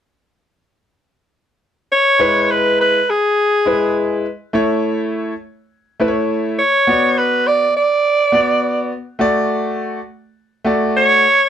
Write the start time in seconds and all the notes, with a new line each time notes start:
1.92 C#5
2.19 G#3 E4 B4
2.51 B4
2.80 B4
3.10 G#4
3.65 G#3 E4 B4
4.53 A3 E4 C#5
6.00 A3 E4 B4
6.08 C#5
6.58 C#5
6.87 B3 F#4 D5
7.18 B4
7.47 D5
7.77 D5
8.32 B3 F#4 D5
9.19 A3 F#4 D5
10.64 A3 F#4 D5
10.96 C#5